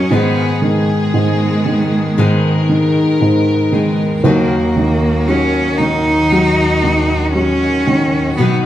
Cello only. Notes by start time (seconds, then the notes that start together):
Already playing: C#4
0.12 B3
0.64 G#3
3.75 G#3
4.26 A#3
5.28 C#4
5.79 D#4
7.33 C#4
8.37 B3